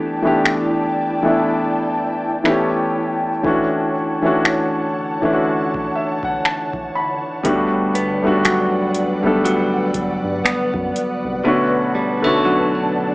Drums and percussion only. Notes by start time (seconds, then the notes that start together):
0.45 finger snap
2.45 finger snap
3.45 kick
4.45 finger snap
5.23 kick
5.74 kick
6.23 kick
6.45 finger snap
6.74 kick
7.45 kick, closed hi-hat
7.95 closed hi-hat
8.45 finger snap, closed hi-hat
8.95 closed hi-hat
9.23 kick
9.45 closed hi-hat
9.94 kick, closed hi-hat
10.46 finger snap, closed hi-hat
10.74 kick
10.96 closed hi-hat